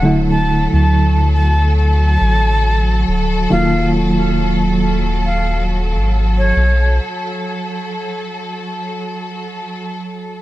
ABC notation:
X:1
M:4/4
L:1/16
Q:"Swing 16ths" 1/4=69
K:F#m
V:1 name="Flute"
f a2 a3 a2 a6- a z | ^e2 z6 e2 z3 c3 | z16 |]
V:2 name="String section"
[F,A]16- | [F,A]16- | [F,A]16 |]
V:3 name="Reed electric piano" clef=bass
[D,F,A,E]16 | [^D,F,^A,^E]16 | z16 |]
V:4 name="Sub bass" clef=bass
D,,,3 D,,6- D,, A,,,4 D,,,2 | ^D,,,8- D,,,3 G,,,3 B,,,2 | z16 |]